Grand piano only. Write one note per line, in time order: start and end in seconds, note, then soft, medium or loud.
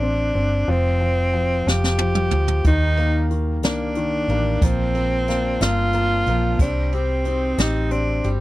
0.00 0.03 C4 medium
0.00 0.33 C4 medium
0.35 0.67 C4 medium
0.68 0.99 F3 medium
1.01 1.32 F3 soft
1.34 1.66 F3 soft
1.67 1.98 F3 medium
2.00 2.31 F3 soft
2.33 2.64 F3 soft
2.67 3.29 D#3 medium
2.98 3.62 A#3 soft
3.31 3.95 D#3 soft
3.64 4.29 A#3 soft
3.97 4.60 D#3 soft
4.30 4.61 A#3 medium
4.63 4.94 A#3 medium
4.95 5.27 A#3 soft
5.29 5.60 A#3 soft
5.62 5.93 A#3 medium
5.94 6.28 A#3 medium
6.29 6.60 A#3 medium
6.61 7.24 C4 medium
6.94 7.57 G4 soft
7.26 7.90 C4 medium
7.59 8.23 G4 medium
7.91 8.40 C4 medium
8.25 8.40 G4 medium